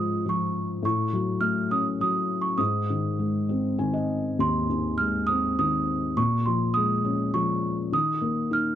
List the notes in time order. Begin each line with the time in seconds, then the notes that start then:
Already playing: G#2 F3 G#3 F4 D#6
0.26 F3 C#6
0.83 A2 C#6
1.13 F#3
1.41 A3 F6
1.70 C#4 D#6
2.00 F#3 D#6
2.42 C#6
2.58 G#2 D#6
2.90 D#3
3.19 G#3
3.49 C4
3.79 D#3 G#5
3.93 D#5
4.39 D#2 C6
4.70 D#3
4.98 G#3 F6
5.27 C4 D#6
5.59 D#3 D#6
6.17 A#2 C#6
6.46 F3 C6
6.74 G#3 D#6
7.04 C#4
7.34 F3 C#6
7.92 D#3 D#6
8.22 A#3
8.51 D#4 F6